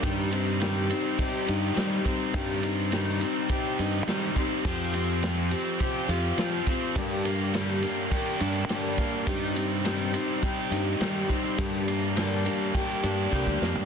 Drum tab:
CC |----------------|----------------|x---------------|----------------|
RD |x-x-x-x-x-x-x-x-|x-x-x-x-x-x-x-x-|--x-x-x-x-x-x-x-|x-x-x-x-x-x-x-x-|
SD |----o-------o---|----o-------o---|----o-------o---|----o-------o---|
FT |----------------|----------------|----------------|----------------|
BD |o-------o-----o-|o-------o-----o-|o-------o-----o-|o-------o-----o-|

CC |----------------|----------------|
RD |x-x-x-x-x-x-x-x-|x-x-x-x-x-x-----|
SD |----o-------o---|----o---------o-|
FT |----------------|---------------o|
BD |o-------o-----o-|o-------o---oo--|